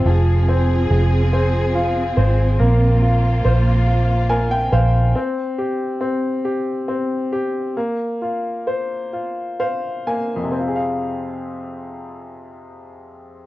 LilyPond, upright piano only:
\new Staff \with { instrumentName = "Upright piano" } { \time 6/8 \key f \minor \tempo 4. = 46 << { r2. | r2 aes''16 g''16 f''8 | r2. | r2 f''8 aes''8 |
r2. | } \\ { f8 c'8 aes'8 c'8 f'8 c''8 | bes8 f'8 c''8 f'8 bes'8 c''8 | c'8 g'8 c'8 g'8 c'8 g'8 | bes8 f'8 c''8 f'8 c''8 bes8 |
<f, c c' f' aes' f''>2. | } >> }